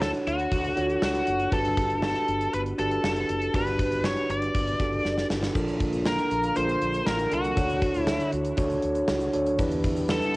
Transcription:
Already playing: D2 D4 F#4 A4 C#5
0.02 A4, snare
0.14 closed hi-hat
0.27 D2 F#4, closed hi-hat
0.39 closed hi-hat
0.52 D2, kick, closed hi-hat
0.64 closed hi-hat
0.76 D2 D4 F4 A4 C#5, closed hi-hat
0.82 F#4
0.90 closed hi-hat
1.02 C#2 F#4, snare
1.14 closed hi-hat
1.27 F#1, closed hi-hat
1.40 closed hi-hat
1.51 G1 D4 F#4 G4 A4 B4, kick, closed hi-hat
1.65 closed hi-hat
1.77 kick, closed hi-hat
1.90 closed hi-hat
2.02 A4, snare
2.15 closed hi-hat
2.28 G1, closed hi-hat
2.41 closed hi-hat
2.54 G1 B4, closed hi-hat
2.66 closed hi-hat
2.78 G1 D4 F#4 G4 A4 B4, closed hi-hat
2.91 closed hi-hat
3.04 F#1, snare
3.16 closed hi-hat
3.29 F#1, closed hi-hat
3.42 closed hi-hat
3.54 G1 D4 F#4 G4 B4, kick, closed hi-hat
3.67 closed hi-hat
3.79 kick, closed hi-hat
3.92 closed hi-hat
4.04 C#5, snare
4.17 closed hi-hat
4.29 G1 D5, closed hi-hat
4.42 closed hi-hat
4.55 G1, kick, closed hi-hat
4.67 closed hi-hat
4.80 G1 D4 F#4 G4 A4, kick, closed hi-hat
4.92 closed hi-hat
5.05 F#1, snare
5.18 snare
5.30 G1, snare
5.43 snare
5.54 A#1 D3 A#3 D4 F4 A4 A#4, kick, crash, shaker
5.68 closed hi-hat, shaker
5.80 kick, closed hi-hat
5.93 closed hi-hat, shaker
6.05 A#4, snare, shaker
6.18 closed hi-hat, shaker
6.30 A#1, closed hi-hat, shaker
6.43 closed hi-hat, shaker
6.55 A#1 D4 F4 A4 A#4 C5, closed hi-hat, shaker
6.68 closed hi-hat, shaker
6.81 A#1, closed hi-hat
6.93 closed hi-hat, shaker
7.06 A1 A#4, snare, shaker
7.19 closed hi-hat, shaker
7.31 C2 D4 F4 F#4 A4 A#4, closed hi-hat
7.44 closed hi-hat, shaker
7.56 D2 D4 F#4 A4 C#5, kick, closed hi-hat, shaker
7.70 closed hi-hat, shaker
7.82 kick, closed hi-hat
7.94 closed hi-hat, shaker
8.01 E4
8.07 snare, shaker
8.20 closed hi-hat, shaker
8.33 D2, closed hi-hat, shaker
8.45 closed hi-hat, shaker
8.57 D2 D4 F#4 A4 C#5, kick, closed hi-hat, shaker
8.70 closed hi-hat, shaker
8.82 D2, closed hi-hat
8.95 closed hi-hat, shaker
9.08 C#2, snare, shaker
9.21 closed hi-hat, shaker
9.33 D2 D4 F#4 A4 C#5, closed hi-hat
9.46 closed hi-hat, shaker
9.58 E2 D3 G3 B3 D4 E4 G4 B4, kick, closed hi-hat, shaker
9.71 closed hi-hat, shaker
9.84 kick, closed hi-hat
9.96 closed hi-hat, shaker
10.08 A4, snare, shaker
10.22 closed hi-hat, shaker

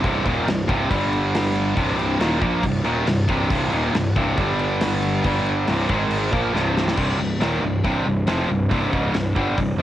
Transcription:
0.04 C1 C2 G2 C3, kick, crash
0.25 D#1 D#2 A#2 D#3, kick, crash
0.46 C1 C2 G2, snare, crash
0.67 C1 C2 G2 C3, kick, crash
0.90 G1 G2 D3 G3, kick, crash
1.13 crash
1.34 snare, crash
1.55 crash
1.75 C1 C2 G2 C3, kick, crash
1.99 crash
2.19 D#1 D#2 A#2 D#3, snare, crash
2.40 A#1 A#2 F3 A#3, kick, crash
2.62 C1 C2 G2, kick, crash
2.84 D#1 D#2 A#2 D#3, crash
3.06 C1 C2 G2, snare, crash
3.28 C1 C2 G2 C3, kick, crash
3.50 C1 C2 G2 C3, kick, crash
3.71 D#1 D#2 A#2 D#3, crash
3.94 C1 C2 G2, snare, crash
4.16 C1 C2 G2 C3, kick, crash
4.37 G1 G2 D3 G3, kick, crash
4.59 crash
4.81 snare, crash
5.02 crash
5.23 G1 G2 D3 G3, kick, crash
5.46 crash
5.67 C1 C2 G2 C3, snare, crash
5.89 G#1 G#2 D#3 G#3, kick, crash
6.10 crash
6.32 A#1 A#2 F3 A#3, kick, crash
6.53 C1 C2 G2 C3, snare
6.77 snare
6.88 snare
6.97 C1 C2 G2 C3, kick, crash
7.18 C1 C2 G2
7.40 D#1 D#2 A#2 D#3, snare, open hi-hat
7.62 C1 C2 G2
7.84 C1 C2 G2 C3, kick, open hi-hat
8.05 C1 C2 G2
8.27 F1 F2 C3 F3, snare, open hi-hat
8.49 C1 C2 G2
8.71 C1 C2 G2 C3, kick, open hi-hat
8.93 C#1 C#2 G#2 C#3, kick
9.14 C1 C2 G2, snare, open hi-hat
9.36 G1 G2 D3 G3, kick
9.58 C1 C2 G2, kick, open hi-hat
9.78 F1 F2 C3

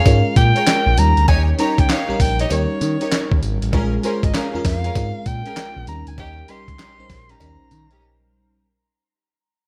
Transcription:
Already playing: G#3 C#4 F4 A#4 F5
0.05 G#2 G#3 C#4 F4 A#4, kick, closed hi-hat, tambourine, cowbell
0.36 A#2 G5, kick, closed hi-hat, tambourine
0.55 G#4 A#4 C#5, closed hi-hat
0.67 snare, clap, closed hi-hat, tambourine, cowbell
0.86 A#1
0.97 D#2 G3 C#4 D#4 A#4 A#5, closed hi-hat, tambourine
1.17 D2, closed hi-hat
1.28 D#2 D#4 G4 C#5 G#5, kick, closed hi-hat, cowbell
1.58 G3 C#4 D#4 G4 A#4 C#5 A#5, closed hi-hat, tambourine
1.78 C#2 G5, kick, closed hi-hat
1.89 D#4 G4 C#5 F5, snare, clap, closed hi-hat, tambourine, cowbell
2.09 A#1 G3 C#4 D#4 A#4
2.20 A#1 G5, kick, open hi-hat, tambourine
2.39 D#4 G4 C#5 D#5, closed hi-hat
2.50 D#2 G3 C#4 D#4 A#4 C#5, closed hi-hat, tambourine, cowbell
2.81 D#3, closed hi-hat, tambourine
3.01 D#4 G4 C#5, closed hi-hat
3.12 snare, clap, closed hi-hat, tambourine, cowbell
3.32 D#2, kick
3.42 G#1, closed hi-hat, tambourine
3.62 A1, closed hi-hat
3.73 A#1 G#3 C#4 F4 G#4 A#4, kick, closed hi-hat, cowbell
4.03 G#3 C#4 F4 G#4 A#4 C5, closed hi-hat, tambourine
4.23 G#1 D#5, kick, closed hi-hat
4.34 C#4 G#4 A#4 F5, snare, clap, closed hi-hat, tambourine, cowbell
4.54 F2 G#3 C#4 F4 A#4
4.65 F2 F5, kick, snare, open hi-hat, tambourine
4.84 C#4 G#4 A#4, closed hi-hat
4.95 G#2 G#3 C4 F4 A#4, kick, closed hi-hat, tambourine, cowbell
5.03 C#4
5.26 A#2 G5, kick, closed hi-hat, tambourine
5.45 C#4 G#4 A#4, closed hi-hat
5.56 snare, clap, closed hi-hat, tambourine, cowbell
5.76 A#1
5.87 D#2 G3 C#4 D#4 A#4 A#5, closed hi-hat, tambourine
6.07 D2 G#5, closed hi-hat
6.18 D#2 C#4 D#4 G4 G5, kick, closed hi-hat, cowbell
6.48 G3 C#4 D#4 G4 A#4 C6, closed hi-hat, tambourine
6.68 C#2, kick, closed hi-hat
6.79 C#4 D#4 G4, snare, clap, closed hi-hat, tambourine, cowbell
6.99 A#1 G3 C#4 D#4 C5
7.10 A#1, kick, snare, open hi-hat, tambourine
7.29 C#4 D#4 G4 A#5, closed hi-hat
7.40 D#2 G3 C#4 D#4 A#4, closed hi-hat, tambourine, cowbell
7.71 D#3, closed hi-hat, tambourine
7.90 C#4 D#4 G4, closed hi-hat

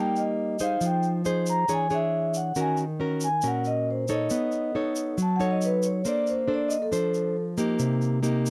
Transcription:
Already playing: G3 A#3 D#4 G4
0.00 G5
0.16 D#5, shaker
0.59 D#4 G#4 C5 F5, shaker
0.81 F3, shaker
0.86 G5
1.03 shaker
1.25 D#4 G#4 C5, shaker
1.46 A#5, shaker
1.68 E3 D4 G#4 C#5, shaker
1.73 G#5
1.90 D4 G#4 C#5 E5, shaker
2.34 F#5, shaker
2.55 D#3 C#4 F#4 A#4, shaker
2.60 G#5
2.77 shaker
3.00 C#4 F#4 A#4
3.21 G#5, shaker
3.42 A#2 C#4 F#4 A#4, shaker
3.48 F#5
3.64 D#5, shaker
3.91 C5
4.08 D#4 A4 C#5 D#5, shaker
4.30 B3, shaker
4.52 shaker
4.75 D#4 A4 C#5
4.96 shaker
5.18 F#3, shaker
5.22 A5
5.36 D#4 F#5, shaker
5.40 A4 C#5
5.51 D#5
5.61 B4, shaker
5.83 C#5, shaker
6.05 A#3 D4 A4 C5 D5, shaker
6.27 C5, shaker
6.48 D4 A4 C5
6.54 D5
6.68 D#5, shaker
6.82 A4
6.91 F3 D4 A4 C5, shaker
7.14 shaker
7.58 A#3 D#4 G4, shaker
7.79 C3, shaker
8.02 shaker
8.23 A#3 D#4 G4, shaker
8.46 shaker

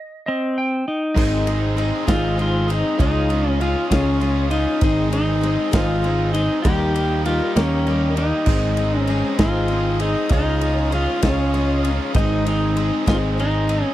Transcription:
Already playing: D#5
0.26 C4 D#5
0.58 G5
0.88 D#4
1.14 G#1 G#2 D#3 G#3 C4 D#4 G#4 C5 D#5 G#5 D#6, kick, crash
1.18 G#4
1.46 G#3 C4 D#4 G#4, ride
1.77 G#3 C4 D#4 G#4, ride
2.07 G#1 G#2 D#3 G#3 C4 D#4 F4 G#4 C5 D#5, kick, snare, ride
2.38 G#3 C4 D#4 F4 G#4, ride
2.68 G#3 C4 D#4 G#4, ride
2.98 C#2 C#3 G#3 C#4 D#4 F4 G#4 C#5 D#5 F5 D#6, kick, ride
3.29 C#4 D#4 F4 G#4, ride
3.49 C#4
3.60 G#3 C#4 D#4 F4 G#4, ride
3.90 C#2 C#3 G#3 C#4 D#4 F4 G#4 C#5 D#5, kick, snare, ride
4.20 G#3 C#4 D#4 G#4, ride
4.24 F4
4.50 C#4 D#4 F4 G#4, ride
4.81 G#1 G#2 D#3 G#3 C4 D#4 G#4 C5 D#5 G#5, kick, ride
5.10 G#3 C4 D#4 G#4, ride
5.41 G#3 C4 D#4 G#4, ride
5.71 G#1 G#2 D#3 G#3 C4 D#4 F4 G#4 C5 D#5, kick, snare, ride
5.77 C4
6.02 G#3 C4 D#4, ride
6.06 G#4
6.33 G#3 C4 D#4 G#4, ride
6.63 D#2 D#3 G3 A#3 D#4 G4 A#4 D#5 G5 D#6, kick, ride
6.94 A#3 D#4 G4, ride
7.25 G3 A#3 D#4 F4 G4, ride
7.55 D#2 D#3 G3 A#3 C#4 D#4 G4 A#4 D#5, snare, ride
7.87 G3 A#3 D#4 G4, ride
8.16 D#4 G4, ride
8.20 A#3
8.46 G#1 G#2 D#3 G#3 C4 D#4 G#4 C5 D#5 G#5, kick, crash
8.77 G#3 C4 D#4 G#4, ride
8.99 C#4
9.07 G#3 C4 D#4 G#4, ride
9.39 G#1 G#2 D#3 G#3 C4 D#4 F4 G#4 C5 D#5, kick, snare, ride
9.68 G#3 C4 D#4 G#4, ride
10.00 G#3 C4 D#4 G#4, ride
10.29 C#2 C#3 G#3 C#4 D#4 F4 G#4 C#5 D#5 F5, kick, ride
10.33 G#4
10.61 C#4 D#4 F4 G#4, ride
10.91 G#3 C#4 D#4 F4 G#4, ride
11.22 C#2 C#3 G#3 C#4 D#4 F4 G#4 C#5 D#5, kick, snare, ride
11.53 G#3 C#4 D#4 F4 G#4, ride
11.83 D#4 F4 G#4, ride
11.87 C#4
12.14 G#1 G#2 D#3 G#3 C4 D#4 G#4 C5 D#5 G#5, kick, ride
12.46 G#3 C4 D#4 G#4, ride
12.76 G#3 C4 D#4 G#4, ride
13.06 G#1 G#2 D#3 G#3 C4 D#4 F4 G#4 C5 D#5, kick, snare, ride
13.38 G#3 C4 D#4 G#4, ride
13.68 C4 D#4 G#4, ride
13.72 G#3
13.83 C#4

